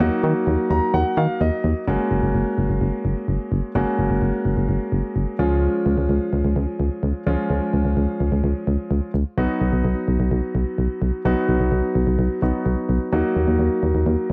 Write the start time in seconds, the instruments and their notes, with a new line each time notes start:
0.00 fm bass D#2, grand piano F#3 A#3 D#4 F#4
0.23 fm bass D#3
0.47 fm bass D#2
0.70 fm bass D#2, grand piano A#5
0.94 fm bass D#2, grand piano F#5
1.17 fm bass D#3, grand piano F5
1.41 fm bass D#2, grand piano D#5
1.64 fm bass D#2
1.87 fm bass F#1, grand piano G#3 A#3 C#4 F#4
2.11 fm bass F#1
2.23 fm bass F#1
2.35 fm bass F#1
2.58 fm bass F#1
2.70 fm bass F#1
2.81 fm bass F#1
3.05 fm bass F#1
3.28 fm bass F#1
3.52 fm bass F#1
3.75 fm bass F#1, grand piano G#3 A#3 C#4 F#4
3.99 fm bass F#1
4.10 fm bass F#1
4.22 fm bass F#1
4.45 fm bass F#1
4.57 fm bass F#1
4.69 fm bass F#1
4.92 fm bass F#1
5.16 fm bass F#1
5.39 fm bass C#2, grand piano F3 G#3 C#4 F4
5.86 fm bass C#2
5.98 fm bass C#2
6.09 fm bass C#2
6.33 fm bass C#2
6.45 fm bass C#2
6.56 fm bass C#2
6.80 fm bass C#2
7.03 fm bass C#2
7.27 fm bass C#2, grand piano F3 G#3 C#4 F4
7.50 fm bass C#2
7.73 fm bass C#2
7.85 fm bass C#2
7.97 fm bass C#2
8.20 fm bass C#2
8.32 fm bass C#2
8.44 fm bass C#2
8.67 fm bass C#2
8.91 fm bass C#2
9.14 fm bass C#2
9.38 fm bass B1, grand piano F#3 B3 D#4 F#4
9.61 fm bass B1
9.73 fm bass B1
9.85 fm bass B1
10.08 fm bass B1
10.20 fm bass B1
10.31 fm bass B1
10.55 fm bass B1
10.78 fm bass B1
11.02 fm bass B1
11.25 fm bass B1, grand piano F#3 B3 D#4 F#4
11.49 fm bass B1
11.60 fm bass B1
11.72 fm bass B1
11.95 fm bass B1
12.07 fm bass B1
12.19 fm bass B1
12.42 fm bass B1, grand piano F#3 B3 D#4 F#4
12.66 fm bass B1
12.89 fm bass B1
13.13 fm bass D#2, grand piano F#3 A#3 D#4 F#4
13.36 fm bass D#2
13.48 fm bass D#2
13.59 fm bass D#2
13.83 fm bass D#2
13.95 fm bass D#2
14.06 fm bass D#2